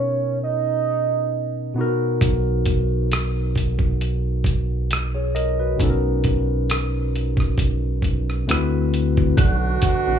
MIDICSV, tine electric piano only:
0, 0, Header, 1, 2, 480
1, 0, Start_track
1, 0, Key_signature, 5, "major"
1, 0, Tempo, 895522
1, 1184, Time_signature, 4, 2, 24, 8
1, 5462, End_track
2, 0, Start_track
2, 0, Title_t, "Tine electric piano"
2, 0, Program_c, 0, 4
2, 0, Control_c, 0, 64, 127
2, 0, Note_on_c, 0, 47, 56
2, 0, Note_on_c, 0, 59, 46
2, 0, Note_on_c, 0, 61, 47
2, 0, Note_on_c, 0, 63, 48
2, 0, Note_on_c, 0, 70, 60
2, 916, Note_off_c, 0, 47, 0
2, 920, Note_off_c, 0, 59, 0
2, 925, Note_off_c, 0, 61, 0
2, 929, Note_off_c, 0, 63, 0
2, 933, Note_off_c, 0, 70, 0
2, 933, Note_on_c, 0, 47, 63
2, 942, Note_on_c, 0, 59, 59
2, 951, Control_c, 0, 64, 0
2, 953, Note_on_c, 0, 63, 57
2, 960, Note_on_c, 0, 66, 61
2, 969, Note_on_c, 0, 70, 75
2, 1037, Control_c, 0, 64, 127
2, 2370, Note_off_c, 0, 66, 0
2, 2375, Note_off_c, 0, 70, 0
2, 2758, Note_on_c, 0, 73, 45
2, 2761, Note_on_c, 0, 68, 47
2, 2837, Note_off_c, 0, 47, 0
2, 2842, Note_off_c, 0, 59, 0
2, 2847, Note_off_c, 0, 63, 0
2, 2861, Note_off_c, 0, 73, 0
2, 2862, Note_off_c, 0, 68, 0
2, 2867, Note_on_c, 0, 75, 62
2, 2869, Note_on_c, 0, 70, 57
2, 2989, Note_off_c, 0, 75, 0
2, 2990, Note_off_c, 0, 70, 0
2, 2999, Note_on_c, 0, 71, 52
2, 3001, Note_on_c, 0, 66, 44
2, 3090, Note_on_c, 0, 47, 65
2, 3100, Note_on_c, 0, 59, 57
2, 3107, Note_on_c, 0, 61, 60
2, 3110, Control_c, 0, 64, 0
2, 3118, Note_on_c, 0, 63, 61
2, 3125, Note_on_c, 0, 69, 60
2, 3152, Note_off_c, 0, 69, 0
2, 3162, Note_on_c, 0, 70, 68
2, 3203, Control_c, 0, 64, 127
2, 3225, Note_off_c, 0, 66, 0
2, 3225, Note_off_c, 0, 71, 0
2, 4516, Note_off_c, 0, 47, 0
2, 4521, Note_off_c, 0, 59, 0
2, 4524, Note_off_c, 0, 61, 0
2, 4529, Note_off_c, 0, 63, 0
2, 4540, Note_on_c, 0, 50, 61
2, 4542, Note_on_c, 0, 57, 54
2, 4547, Note_on_c, 0, 60, 56
2, 4549, Note_on_c, 0, 64, 58
2, 4550, Control_c, 0, 64, 0
2, 4551, Note_off_c, 0, 70, 0
2, 4554, Note_on_c, 0, 66, 55
2, 4559, Note_on_c, 0, 71, 65
2, 4644, Control_c, 0, 64, 127
2, 5022, Note_off_c, 0, 50, 0
2, 5023, Note_off_c, 0, 57, 0
2, 5025, Note_off_c, 0, 60, 0
2, 5027, Note_off_c, 0, 64, 0
2, 5029, Note_off_c, 0, 66, 0
2, 5031, Note_off_c, 0, 71, 0
2, 5032, Control_c, 0, 64, 0
2, 5120, Control_c, 0, 64, 127
2, 5462, End_track
0, 0, End_of_file